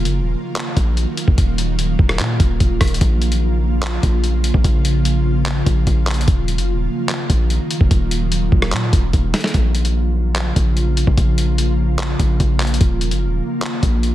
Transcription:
Already playing: D#3 F#3 A#3 F4
0.05 F#1, closed hi-hat
0.20 D#1
0.56 clap, closed hi-hat
0.77 A#1, kick, closed hi-hat
0.97 closed hi-hat
1.17 closed hi-hat
1.28 D#1, kick
1.38 D#1, kick, closed hi-hat
1.58 closed hi-hat
1.79 closed hi-hat
1.99 D#1, kick
2.09 cross-stick
2.19 A#2, clap, closed hi-hat
2.40 D#1, kick, closed hi-hat
2.60 D#1, kick, closed hi-hat
2.81 D#1, kick, cross-stick, closed hi-hat, open hi-hat
2.88 closed hi-hat
2.94 closed hi-hat
3.01 A#1 C#3 F3, kick, closed hi-hat
3.22 closed hi-hat
3.32 closed hi-hat
3.83 clap, closed hi-hat
4.03 A#1, kick, closed hi-hat
4.24 closed hi-hat
4.44 closed hi-hat
4.54 A#1, kick
4.64 A#1, kick, closed hi-hat
4.85 closed hi-hat
5.05 closed hi-hat
5.46 clap, closed hi-hat
5.66 A#1, kick, closed hi-hat
5.87 A#1, kick, closed hi-hat
6.07 clap, closed hi-hat, open hi-hat
6.14 closed hi-hat
6.21 closed hi-hat
6.28 D#1 D#3 F#3 A#3, kick, closed hi-hat
6.48 closed hi-hat
6.58 F#1, closed hi-hat
6.74 D#1
7.09 clap, closed hi-hat
7.30 A#1, kick, closed hi-hat
7.50 closed hi-hat
7.71 closed hi-hat
7.81 D#1, kick
7.91 D#1, kick, closed hi-hat
8.11 closed hi-hat
8.32 closed hi-hat
8.52 D#1, kick
8.62 cross-stick
8.72 A#2, clap, closed hi-hat
8.93 D#1, kick, closed hi-hat
9.13 D#1, kick, closed hi-hat
9.34 snare, closed hi-hat, open hi-hat
9.41 snare, closed hi-hat
9.47 closed hi-hat
9.54 A#1 C#3 F3 A#3 F4, kick, closed hi-hat
9.75 closed hi-hat
9.85 closed hi-hat
10.36 clap, closed hi-hat
10.56 A#1, kick, closed hi-hat
10.77 closed hi-hat
10.97 closed hi-hat
11.07 A#1, kick
11.18 A#1, kick, closed hi-hat
11.38 closed hi-hat
11.58 closed hi-hat
11.99 clap, closed hi-hat
12.19 A#1, kick, closed hi-hat
12.40 A#1, kick, closed hi-hat
12.60 clap, closed hi-hat, open hi-hat
12.67 closed hi-hat
12.74 closed hi-hat
12.81 D#1 D#3 F#3 F4, kick, closed hi-hat
13.01 closed hi-hat
13.11 F#1, closed hi-hat
13.27 D#1
13.62 clap, closed hi-hat
13.83 A#1, kick, closed hi-hat
14.03 closed hi-hat

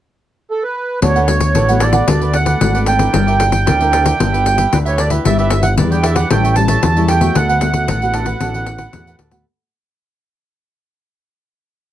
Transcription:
0.50 A4
0.63 B4
1.02 D2 D3 A3 B3 D4 F#4 A4 B4 C#5 F#5, pandeiro
1.15 A4 B4 F#5, pandeiro
1.27 A3 B3 F#4, muted cavaquinho stroke, pandeiro
1.40 pandeiro
1.55 A1 A2 D4 A4 B4 F#5, pandeiro
1.69 A3 B3 F#4 A4 B4 F#5, pandeiro
1.80 D4 A4 B4 D5 F#5, pandeiro
1.93 A4 B4 F#5, pandeiro
2.08 D2 D3 A3 B3 D4 F#4 A4 B4 D5, pandeiro
2.21 A4 B4 D5, pandeiro
2.33 F#5, muted cavaquinho stroke, pandeiro
2.45 A4 B4 D5, pandeiro
2.61 G#1 D3 A3 B3 F#4, pandeiro
2.75 A4 B4 D5, pandeiro
2.86 D4 A4 B4 D5 G5, pandeiro
2.98 D4 E4 A4 A#4 B4 D5, pandeiro
3.13 G1 G3 G4 A#4 D5 E5, pandeiro
3.27 A#4 D5 E5, pandeiro
3.39 D4 E4 A#4, muted cavaquinho stroke, pandeiro
3.52 pandeiro
3.66 D2 D3 G4 A#4 D5 E5, pandeiro
3.80 D4 E4 A#4 D5 E5, pandeiro
3.91 G4 A#4 D5 E5, pandeiro
4.04 A#4 D5 E5, pandeiro
4.19 G1 G3 D4 E4 G4 B4 E5, pandeiro
4.32 G4 B4 E5, pandeiro
4.46 pandeiro
4.57 G4 B4 E5, pandeiro
4.73 D2 D3 D4 E4 B4, pandeiro
4.85 G4 B4 C#5 E5, pandeiro
4.97 D4 G4 B4 D5 E5, pandeiro
5.10 D4 E4 G4 B4 E5, pandeiro
5.25 G1 G3 E4 G4 B4 D5 E5, pandeiro
5.38 G4 B4 D5 E5, pandeiro
5.50 D4 E4 B4, muted cavaquinho stroke, pandeiro
5.63 F#5, pandeiro
5.77 E2 G3 E4 G4 B4 D5, pandeiro
5.91 D4 E4 G4 B4 D5 G5, pandeiro
6.03 E4 G4 B4 D5 E5, pandeiro
6.15 G4 B4 D5 F#5, pandeiro
6.30 A1 A2 G3 C#4 E4 G4 A4 C#5 E5 G5, pandeiro
6.44 A4 C#5 E5, pandeiro
6.56 G3 C#4 E4 A5, muted cavaquinho stroke, pandeiro
6.68 A4 C#5 E5, pandeiro
6.83 E2 E3, pandeiro
6.96 G3 C#4 E4 A4 C#5 E5, pandeiro
7.08 G4 A4 C#5 E5 G5, pandeiro
7.20 A3 B3 F#4 A4 C#5 E5, pandeiro
7.35 D2 D3 D4 A4 B4 F#5, pandeiro
7.49 A4 B4 F#5, pandeiro
7.61 A3 B3 F#4, pandeiro
7.74 pandeiro
7.88 A1 A2 D4 A4 B4 F#5, pandeiro
8.02 A3 B3 F#4 A4 B4 F#5, pandeiro
8.14 D4 A4 B4 F#5, pandeiro
8.26 A4 B4 F#5, pandeiro
8.40 A1 D3 A3 B3 D4 F#4 A4 B4 F#5, pandeiro
8.54 A4 B4 F#5, pandeiro
8.66 pandeiro
8.78 A4 B4 F#5, pandeiro
8.93 E2 A2 A3 B3 F#4, pandeiro
9.07 A4 B4 F#5, pandeiro
9.19 D2 D4 A4 B4 F#5, pandeiro
9.31 A3 B3 F#4 A4 B4 F#5, pandeiro

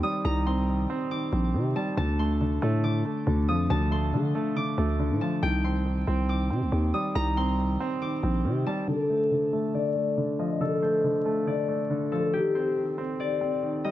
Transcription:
Already playing: D#3 C4
0.03 G3 D#6
0.25 C2 D#3 A#5
0.46 C4 C6
0.68 D#3
0.90 C4
1.11 D#3 D6
1.32 A#1 C4
1.54 C3 D#3
1.76 G3 A5
1.97 D2 D3 A5
2.19 A3 C6
2.41 D3
2.62 A2 A3
2.83 D3 D6
3.05 A3
3.27 D2 D3
3.48 F2 F3 D#6
3.70 D2 D3 A5
3.91 A3 C6
4.13 D3
4.35 A3
4.56 D3 D6
4.78 D2 A3
5.00 D3
5.11 A2
5.21 F3 A5
5.43 C2 D#3 G5
5.64 C4 C6
5.86 D#3
6.07 C2 C4
6.29 D#3 D6
6.50 C3 C4
6.62 C2
6.72 D#2 D#3
6.94 G3 D#6
7.15 C2 D#3 A#5
7.37 C4 C6
7.59 D#3
7.80 C4
8.02 D#3 D6
8.23 A#1 C4
8.45 C3 D#3
8.66 G3 A5
8.88 D3 A4
9.10 A3 C5
9.31 D3
9.53 A3
9.74 D3 D5
9.96 A3
10.18 D3
10.39 F3 D#5
10.61 D3 A4
10.82 A3 C5
11.04 D3
11.25 A3
11.47 D3 D5
11.69 A3
11.90 D3
12.12 F3 A4
12.33 D#3 G4
12.55 C4 C5
12.76 D#3
12.98 C4
13.20 D#3 D5
13.41 C4
13.63 D#3
13.84 G3 D#5

